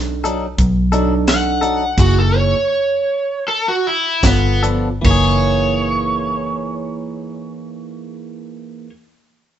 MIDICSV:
0, 0, Header, 1, 6, 480
1, 0, Start_track
1, 0, Tempo, 689655
1, 1378, Time_signature, 4, 2, 24, 8
1, 1378, Tempo, 736196
1, 2338, Tempo, 778210
1, 2818, Tempo, 829876
1, 5920, End_track
2, 0, Start_track
2, 0, Title_t, "Overdriven electric guitar"
2, 0, Program_c, 0, 29
2, 899, Note_on_c, 0, 78, 85
2, 1393, Note_on_c, 0, 66, 82
2, 1500, Note_off_c, 0, 66, 0
2, 1512, Note_on_c, 0, 69, 67
2, 1596, Note_off_c, 0, 78, 0
2, 1631, Note_off_c, 0, 69, 0
2, 1631, Note_on_c, 0, 73, 78
2, 2326, Note_off_c, 0, 73, 0
2, 2355, Note_on_c, 0, 69, 79
2, 2463, Note_off_c, 0, 69, 0
2, 2480, Note_on_c, 0, 66, 81
2, 2583, Note_off_c, 0, 66, 0
2, 2596, Note_on_c, 0, 64, 88
2, 2821, Note_off_c, 0, 64, 0
2, 2837, Note_on_c, 0, 59, 87
2, 3053, Note_off_c, 0, 59, 0
2, 3298, Note_on_c, 0, 73, 99
2, 5516, Note_off_c, 0, 73, 0
2, 5920, End_track
3, 0, Start_track
3, 0, Title_t, "Tine electric piano"
3, 0, Program_c, 1, 4
3, 0, Note_on_c, 1, 62, 65
3, 0, Note_on_c, 1, 63, 66
3, 0, Note_on_c, 1, 69, 71
3, 251, Note_off_c, 1, 62, 0
3, 254, Note_off_c, 1, 63, 0
3, 255, Note_off_c, 1, 69, 0
3, 648, Note_on_c, 1, 62, 86
3, 652, Note_on_c, 1, 63, 78
3, 658, Note_on_c, 1, 69, 99
3, 1256, Note_off_c, 1, 62, 0
3, 1258, Note_off_c, 1, 63, 0
3, 1261, Note_off_c, 1, 69, 0
3, 1373, Note_on_c, 1, 58, 64
3, 1374, Note_on_c, 1, 63, 60
3, 1377, Note_on_c, 1, 64, 61
3, 1381, Note_on_c, 1, 68, 75
3, 1753, Note_off_c, 1, 58, 0
3, 1754, Note_off_c, 1, 63, 0
3, 1755, Note_off_c, 1, 64, 0
3, 1757, Note_off_c, 1, 68, 0
3, 2817, Note_on_c, 1, 59, 78
3, 2818, Note_on_c, 1, 65, 67
3, 2824, Note_on_c, 1, 69, 78
3, 3209, Note_off_c, 1, 59, 0
3, 3210, Note_off_c, 1, 65, 0
3, 3213, Note_off_c, 1, 69, 0
3, 3276, Note_on_c, 1, 58, 74
3, 3286, Note_on_c, 1, 63, 63
3, 3296, Note_on_c, 1, 64, 66
3, 3307, Note_on_c, 1, 68, 78
3, 5495, Note_off_c, 1, 58, 0
3, 5505, Note_off_c, 1, 63, 0
3, 5514, Note_off_c, 1, 64, 0
3, 5526, Note_off_c, 1, 68, 0
3, 5920, End_track
4, 0, Start_track
4, 0, Title_t, "Clean electric guitar"
4, 0, Program_c, 2, 27
4, 167, Note_on_c, 2, 69, 73
4, 173, Note_on_c, 2, 63, 74
4, 179, Note_on_c, 2, 62, 63
4, 183, Note_on_c, 2, 54, 70
4, 313, Note_off_c, 2, 69, 0
4, 316, Note_off_c, 2, 63, 0
4, 319, Note_off_c, 2, 62, 0
4, 321, Note_off_c, 2, 54, 0
4, 641, Note_on_c, 2, 69, 84
4, 647, Note_on_c, 2, 63, 73
4, 653, Note_on_c, 2, 62, 63
4, 657, Note_on_c, 2, 54, 63
4, 790, Note_off_c, 2, 69, 0
4, 793, Note_off_c, 2, 63, 0
4, 795, Note_off_c, 2, 62, 0
4, 798, Note_off_c, 2, 54, 0
4, 1123, Note_on_c, 2, 69, 63
4, 1131, Note_on_c, 2, 63, 70
4, 1136, Note_on_c, 2, 62, 62
4, 1141, Note_on_c, 2, 54, 55
4, 1276, Note_off_c, 2, 69, 0
4, 1280, Note_off_c, 2, 63, 0
4, 1282, Note_off_c, 2, 62, 0
4, 1285, Note_off_c, 2, 54, 0
4, 3047, Note_on_c, 2, 69, 69
4, 3052, Note_on_c, 2, 62, 64
4, 3056, Note_on_c, 2, 59, 61
4, 3061, Note_on_c, 2, 53, 64
4, 3192, Note_off_c, 2, 69, 0
4, 3195, Note_off_c, 2, 62, 0
4, 3197, Note_off_c, 2, 59, 0
4, 3199, Note_off_c, 2, 53, 0
4, 3272, Note_on_c, 2, 52, 75
4, 3292, Note_on_c, 2, 58, 75
4, 3325, Note_on_c, 2, 68, 85
4, 5514, Note_off_c, 2, 52, 0
4, 5534, Note_off_c, 2, 58, 0
4, 5567, Note_off_c, 2, 68, 0
4, 5920, End_track
5, 0, Start_track
5, 0, Title_t, "Fingered electric bass"
5, 0, Program_c, 3, 33
5, 0, Note_on_c, 3, 35, 88
5, 380, Note_off_c, 3, 35, 0
5, 406, Note_on_c, 3, 35, 93
5, 1348, Note_off_c, 3, 35, 0
5, 1375, Note_on_c, 3, 30, 86
5, 1732, Note_off_c, 3, 30, 0
5, 2817, Note_on_c, 3, 31, 90
5, 3265, Note_off_c, 3, 31, 0
5, 3289, Note_on_c, 3, 30, 79
5, 5507, Note_off_c, 3, 30, 0
5, 5920, End_track
6, 0, Start_track
6, 0, Title_t, "Drums"
6, 174, Note_on_c, 9, 42, 65
6, 243, Note_off_c, 9, 42, 0
6, 407, Note_on_c, 9, 36, 114
6, 408, Note_on_c, 9, 42, 84
6, 477, Note_off_c, 9, 36, 0
6, 477, Note_off_c, 9, 42, 0
6, 645, Note_on_c, 9, 42, 64
6, 715, Note_off_c, 9, 42, 0
6, 886, Note_on_c, 9, 42, 74
6, 891, Note_on_c, 9, 38, 101
6, 956, Note_off_c, 9, 42, 0
6, 960, Note_off_c, 9, 38, 0
6, 1131, Note_on_c, 9, 42, 58
6, 1201, Note_off_c, 9, 42, 0
6, 1376, Note_on_c, 9, 36, 96
6, 1377, Note_on_c, 9, 42, 75
6, 1377, Note_on_c, 9, 49, 75
6, 1441, Note_off_c, 9, 36, 0
6, 1442, Note_off_c, 9, 42, 0
6, 1442, Note_off_c, 9, 49, 0
6, 2818, Note_on_c, 9, 36, 81
6, 2818, Note_on_c, 9, 42, 81
6, 2821, Note_on_c, 9, 38, 99
6, 2876, Note_off_c, 9, 36, 0
6, 2876, Note_off_c, 9, 42, 0
6, 2879, Note_off_c, 9, 38, 0
6, 3052, Note_on_c, 9, 42, 52
6, 3110, Note_off_c, 9, 42, 0
6, 3290, Note_on_c, 9, 36, 94
6, 3291, Note_on_c, 9, 49, 79
6, 3348, Note_off_c, 9, 36, 0
6, 3348, Note_off_c, 9, 49, 0
6, 5920, End_track
0, 0, End_of_file